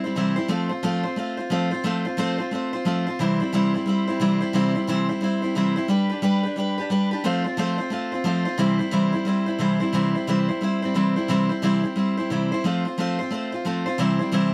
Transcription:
steel-string acoustic guitar
0.04 G3 C4 E4 C5
0.15 C3 E3 G3 C4 E4 C5
0.36 G3 C4 E4 C5
0.48 F3 A3 C4 F4 C5
0.69 C4 F4 C5
0.83 F3 A3 C4 F4 C5
1.03 C4 F4 C5
1.16 A3 C4 F4 C5
1.37 C4 F4 C5
1.50 F3 A3 C4 F4 C5
1.71 C4 F4 C5
1.84 F3 A3 C4 F4 C5
2.05 C4 F4 C5
2.17 F3 A3 C4 F4 C5
2.38 C4 F4 C5
2.51 A3 C4 F4 C5
2.73 C4 F4 C5
2.85 F3 A3 C4 F4 C5
3.07 C4 F4 C5
3.19 C3 E3 G3 C4 E4 C5
3.40 G3 C4 E4 C5
3.53 C3 E3 G3 C4 E4 C5
3.74 G3 C4 E4 C5
3.86 G3 C4 E4 C5
4.07 G3 C4 E4 C5
4.20 C3 E3 G3 C4 E4 C5
4.41 G3 C4 E4 C5
4.53 C3 E3 G3 C4 E4 C5
4.75 G3 C4 E4 C5
4.87 C3 E3 G3 C4 E4 C5
5.09 G3 C4 E4 C5
5.21 G3 C4 E4 C5
5.42 G3 C4 E4 C5
5.55 C3 E3 G3 C4 E4 C5
5.76 G3 C4 E4 C5
5.88 G3 D4 G4 B4
6.09 D4 G4 B4
6.22 G3 D4 G4 B4
6.43 D4 G4 B4
6.56 G3 D4 G4 B4
6.78 D4 G4 B4
6.90 G3 D4 G4 B4
7.11 D4 G4 B4
7.24 F3 A3 C4 F4 C5
7.44 C4 F4 C5
7.57 F3 A3 C4 F4 C5
7.78 C4 F4 C5
7.90 A3 C4 F4 C5
8.12 C4 F4 C5
8.24 F3 A3 C4 F4 C5
8.45 C4 F4 C5
8.58 C3 E3 G3 C4 E4 C5
8.79 G3 C4 E4 C5
8.91 C3 E3 G3 C4 E4 C5
9.13 G3 C4 E4 C5
9.25 G3 C4 E4 C5
9.46 G3 C4 E4 C5
9.59 C3 E3 G3 C4 E4 C5
9.80 G3 C4 E4 C5
9.93 C3 E3 G3 C4 E4 C5
10.14 G3 C4 E4 C5
10.27 C3 E3 G3 C4 E4 C5
10.48 G3 C4 E4 C5
10.61 G3 C4 E4 C5
10.82 G3 C4 E4 C5
10.94 C3 E3 G3 C4 E4 C5
11.16 G3 C4 E4 C5
11.28 C3 E3 G3 C4 E4 C5
11.49 G3 C4 E4 C5
11.62 C3 E3 G3 C4 E4 C5
11.83 G3 C4 E4 C5
11.96 G3 C4 E4 C5
12.17 G3 C4 E4 C5
12.30 C3 E3 G3 C4 E4 C5
12.52 G3 C4 E4 C5
12.64 F3 A3 C4 F4 C5
12.85 C4 F4 C5
12.98 F3 A3 C4 F4 C5
13.19 C4 F4 C5
13.31 A3 C4 F4 C5
13.52 C4 F4 C5
13.65 F3 A3 C4 F4 C5
13.86 C4 F4 C5
13.98 C3 E3 G3 C4 E4 C5
14.19 G3 C4 E4 C5
14.32 C3 E3 G3 C4 E4 C5

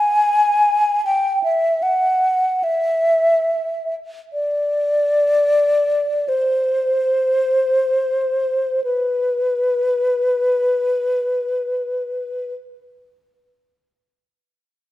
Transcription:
flute
Already playing: G#5
1.06 G5
1.44 E5
1.83 F#5
2.64 E5
4.33 D5
6.28 C5
8.84 B4

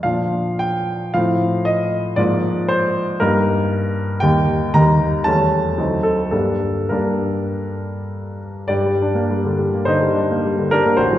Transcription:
grand piano
0.03 A#2 F3 D4 F4 F5
0.59 G5
1.14 A2 F3 C4 F4 F5
1.65 D#5
2.16 G#2 F3 A#3 F4 D5
2.68 C5
3.20 G2 G3 A#3 D#4 A#4
4.20 D#2 G3 A#3 D#4 G5
4.74 D#2 G3 A#3 D#4 A#5
5.24 E2 G3 A3 C#4 A5
5.78 D2 F#3 C4 D#4
6.03 A4
6.31 G2 G3 A#3 D4 A4
6.89 G2 G3 A#3 D4 A#4
8.68 G2 G4 D5
8.85 G3
9.02 D4
9.15 A#3
9.30 G3
9.45 D3
9.59 G3
9.74 A#3
9.85 D3 D#4 C5
10.01 G3
10.14 D4
10.31 A#3
10.45 G3
10.58 D3
10.71 G3 D4 A#4
10.86 A#3
10.97 A1 F#4 C5
11.13 F#3

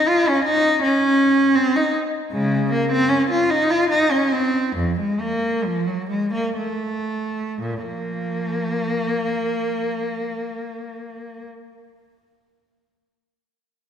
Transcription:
cello
0.08 F4
0.28 C#4
0.45 D#4
0.82 C#4
1.55 C4
1.76 D#4
2.31 C#3 G#3
2.72 A#3
2.92 C4
3.09 C#4
3.30 F4
3.50 D#4
3.70 F4
3.90 D#4
4.11 C#4
4.32 C4
4.76 F2
5.00 G#3
5.21 A#3
5.65 F3
5.87 F#3
6.10 G#3
6.33 A#3
6.58 A3
7.61 A#2
7.81 F3 A#3

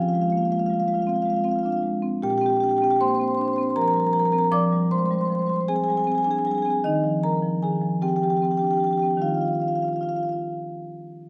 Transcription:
marimba
Already playing: F3
0.02 F4 F5
0.09 F4 F5
0.13 G#3 F4 F5
0.21 F4 F5
0.30 A#3 F4 F5
0.37 F4 F5
0.45 F4 F5
0.51 G#3 F4 F5
0.59 F4 F5
0.66 G3 F4 F5
0.73 F4 F5
0.80 F4 F5
0.87 G#3 F4 F5
0.94 F4 F5
1.01 F4 F5
1.07 C4 F4 F5
1.14 F4 F5
1.21 F4 F5
1.26 G#3 F4
1.30 F5
1.34 F4 F5
1.41 C4 F4 F5
1.48 F4 F5
1.56 F4 F5
1.63 D4 F4 F5
1.70 F4 F5
1.77 F4
1.83 G#3
2.03 C4
2.22 A#2 G4 G5
2.30 G4 G5
2.38 C4 G4 G5
2.44 G4 G5
2.50 G4 G5
2.57 G4 G5
2.62 D4 G5
2.69 G4 G5
2.77 G4 G5
2.82 C4 G4 G5
2.91 G4 G5
2.96 G5
3.00 A#3 C5 C6
3.08 C5 C6
3.15 C5 C6
3.20 C4 C5 C6
3.28 C5 C6
3.35 D4 C5 C6
3.41 C5 C6
3.48 C6
3.53 C5 C6
3.58 C4 C5
3.63 C6
3.69 C5 C6
3.76 F3 A#4 A#5
3.82 A#4 A#5
3.88 A#4 A#5
3.94 G3 A#4 A#5
4.00 A#5
4.04 A#4 A#5
4.12 F3 A#4 A#5
4.19 A#4 A#5
4.25 A#4 A#5
4.32 C4 A#4 A#5
4.38 A#4 A#5
4.44 A#5
4.52 F3 D5 D6
4.72 G3
4.91 G#3 C5 C6
4.98 C5 C6
5.05 C5 C6
5.11 G3 C5 C6
5.19 C5 C6
5.25 C5 C6
5.30 F3 C5
5.35 C6
5.39 C5 C6
5.46 G3 C5 C6
5.53 C5 C6
5.61 C5
5.68 C4 G#4 G#5
5.76 G#4 G#5
5.84 G#4 G#5
5.88 G3 G#4 G#5
5.97 G#4 G#5
6.04 C4 G#4 G#5
6.12 G#4 G#5
6.18 G#5
6.23 D4 G#4 G#5
6.31 G#4 G#5
6.38 G#4 G#5
6.45 G3 G#4 G#5
6.51 G#4 G#5
6.58 G#5
6.62 C4 G#4 G#5
6.70 G#4 G#5
6.84 D#3 D#4 D#5
7.04 F3
7.23 G3 A#4 A#5
7.42 F3
7.63 D#3 G#4 G#5
7.81 F3
8.02 C4 G4 G5
8.08 G4 G5
8.16 G4 G5
8.22 F3 G4 G5
8.30 G4 G5
8.37 G4 G5
8.42 C4 G4 G5
8.51 G4 G5
8.57 D4 G4 G5
8.64 G4 G5
8.71 G4 G5
8.77 G4 G5
8.83 F3 G5
8.87 G4
8.91 G4 G5
8.98 G4 G5
9.02 C4 G5
9.06 G4
9.11 G5
9.17 D#3 G3 D#4
9.22 F4 F5
9.28 F4 F5
9.34 F4 F5
9.41 F4 F5
9.48 F5
9.53 F4 F5
9.60 F4 F5
9.68 F4 F5
9.75 F4 F5
9.82 F4 F5
9.88 F5
9.93 F4 F5
10.01 F4 F5
10.09 F4 F5
10.16 F4 F5
10.23 F4 F5
10.29 F4 F5

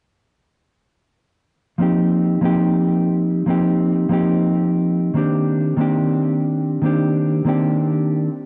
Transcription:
clean electric guitar
1.78 F3 A#3 C4 D#4 G4
2.41 F3 A#3 C4 D#4 G4
3.46 F3 A#3 C4 D#4 G4
4.09 F3 A#3 C4 D#4
4.13 G4
5.14 D#3 A#3 C4 D4
5.18 G4
5.77 D#3 A#3 C4 D4
5.81 G4
6.82 D#3 A#3 C4 D4
6.86 G4
7.45 D#3 A#3 C4 D4
7.49 G4

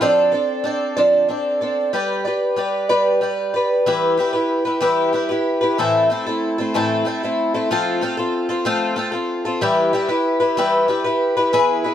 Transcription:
twelve-string acoustic guitar
0.01 D3 F3 C4 D4 A4 D5
0.32 C4 D4 A4 D5
0.64 C4 D4 A4 D5
0.97 D3 F3 C4 D4 A4 D5
1.28 C4 D4 A4 D5
1.61 C4 D4 A4 D5
1.93 G3 G4 B4 D5
2.25 G4 B4 D5
2.56 G3 G4 B4 D5
2.89 G3 G4 B4 D5
3.21 G3 G4 B4 D5
3.54 G4 B4 D5
3.86 E3 G3 E4 G4 B4
4.17 G3 E4 G4 B4
4.33 E4 G4 B4
4.65 E4 G4 B4
4.80 E3 G3 E4 G4 B4
5.13 G3 E4 G4 B4
5.29 E4 G4 B4
5.61 E4 G4 B4
5.78 A2 E3 A3 C4 E4 A4
6.10 A3 C4 E4 A4
6.26 A3 C4 E4 A4
6.58 A3 C4 E4 A4
6.74 A2 E3 A3 C4 E4 A4
7.05 A3 C4 E4 A4
7.23 A3 C4 E4 A4
7.54 A3 C4 E4 A4
7.71 F3 A3 C4 F4 A4
8.01 A3 C4 F4 A4
8.17 C4 F4 A4
8.49 C4 F4 A4
8.65 F3 A3 C4 F4 A4
8.96 A3 C4 F4 A4
9.12 C4 F4 A4
9.45 C4 F4 A4
9.61 E3 G3 E4 G4 B4
9.93 G3 E4 G4 B4
10.08 E4 G4 B4
10.40 E4 G4 B4
10.57 E3 G3 E4 G4 B4
10.88 G3 E4 G4 B4
11.04 E4 G4 B4
11.37 E4 G4 B4
11.53 E3 B3 E4 G#4 B4
11.84 E4 G#4 B4

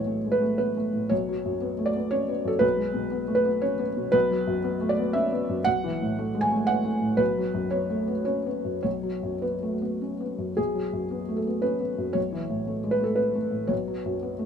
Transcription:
felt piano
Already playing: B1 A2 E3 C#5
0.07 A3
0.25 G#3
0.32 B4
0.41 A3
0.58 B3 B4
0.77 A3
0.93 A2
1.09 B1 C#5
1.29 F#3
1.45 F#2
1.61 B3
1.79 A3
1.86 D5
1.96 B3
2.11 C#4 C#5
2.29 B3
2.45 F#2 A4
2.59 B1 B4
2.77 G#3
2.94 B2
3.11 B3
3.28 A3
3.35 B4
3.45 B3
3.62 C#4 C#5
3.79 B3
3.97 B2
4.12 B1 B4
4.31 F#3
4.47 F#2
4.64 B3
4.81 A3
4.89 D5
4.99 B3
5.13 C#4 E5
5.32 B3
5.49 F#2
5.64 B1 F#5
5.84 E3
6.02 A2
6.19 A3
6.35 G#3
6.41 G#5
6.52 A3
6.67 B3 F#5
6.85 A3
7.01 A2
7.17 B1 B4
7.38 F#3
7.54 F#2
7.71 B3 C#5
7.90 A3
8.08 B3
8.25 C#4 C#5
8.46 B3
8.65 F#2
8.83 B1 C#5
9.03 F#3
9.23 F#2
9.42 B3 B4
9.63 A3
9.82 B3
10.01 C#4
10.20 B3
10.38 F#2
10.57 B1 G#4
10.75 F#3
10.93 F#2
11.11 B3
11.29 A3
11.37 A4
11.47 B3
11.62 C#4 B4
11.80 B3
11.98 F#2
12.13 B1 C#5
12.32 E3
12.50 A2
12.67 A3
12.84 G#3
12.91 B4
13.00 A3 A4
13.16 B3 B4
13.35 A3
13.51 A2
13.67 B1 C#5
13.88 F#3
14.06 F#2
14.22 B3
14.39 A3

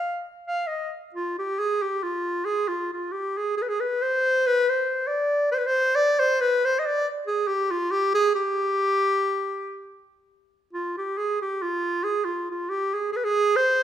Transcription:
clarinet
Already playing: F5
0.47 F5
0.67 D#5
1.15 F4
1.39 G4
1.59 G#4
1.82 G4
2.03 F4
2.45 G#4
2.68 F4
2.93 F4
3.12 G4
3.38 G#4
3.57 G#4
3.62 B4
3.68 G#4
3.80 B4
4.02 C5
4.46 B4
4.69 C5
5.07 D5
5.51 C5
5.58 B4
5.66 C5
5.95 D5
6.19 C5
6.41 B4
6.65 C5
6.79 D#5
6.86 D5
7.27 G#4
7.47 G4
7.71 F4
7.91 G4
8.14 G#4
8.35 G4
10.73 F4
10.98 G4
11.18 G#4
11.42 G4
11.62 F4
12.04 G#4
12.25 F4
12.51 F4
12.69 G4
12.94 G#4
13.13 G#4 B4
13.24 G#4
13.56 C5

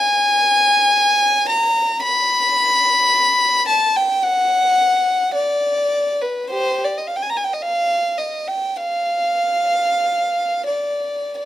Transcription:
violin
Already playing: G#5
1.49 A#5
2.03 B5
3.69 A5
3.96 G5
4.23 F#5
5.34 D5
6.21 B4
6.50 G4 C5
6.84 D5
6.98 D#5
7.07 F5
7.16 G5
7.22 G#5
7.30 A#5
7.37 G#5
7.44 G5
7.53 D#5
7.62 F5
8.17 D#5
8.47 G5
8.77 F5
10.67 D5
11.38 D5

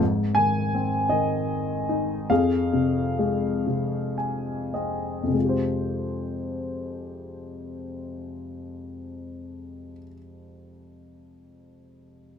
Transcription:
grand piano
0.00 G#2
0.35 D#3 G#5
0.74 C4
1.09 D#3 D#5
1.89 D#4
2.30 F2 G#4 F5
2.73 C3
3.19 G#3
3.67 C3
4.18 G#5
4.74 C4 D#5
5.23 F2
5.28 C3
5.33 G#3
5.39 F4
5.44 G4
5.49 C5

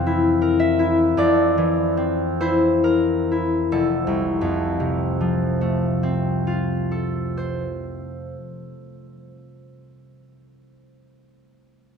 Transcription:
harp
Already playing: F2 E3 C4 C5 F5
0.06 E4
0.42 A#4
0.59 E5
0.79 E4
1.17 F2 D5
1.58 E3
1.97 C4
2.41 E4 C5
2.84 A#4
3.31 E4
3.72 F1 A4
4.07 C2
4.41 F2
4.80 C3
5.20 F3
5.61 A3
6.03 C4
6.47 F4
6.91 A4
7.37 C5

